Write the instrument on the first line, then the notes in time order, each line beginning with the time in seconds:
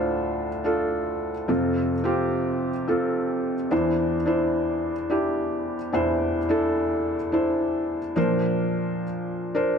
felt piano
Already playing: D2 A2 D4 F4 A4 C5
0.64 D4 F4 A4
1.48 F2 C3 C4 F4 A4
2.04 C4 F4 G4
2.88 C4 F4 A4
3.71 E2 E3 D4 E4 C5
4.26 D4 E4 C5
5.10 D4 E4 G4
5.92 E2 E3 D4 E4 C5
6.49 D4 E4 A4
7.32 D4 E4 C5
8.16 A#2 F3 D4 A#4 C5
9.55 D4 A#4 C5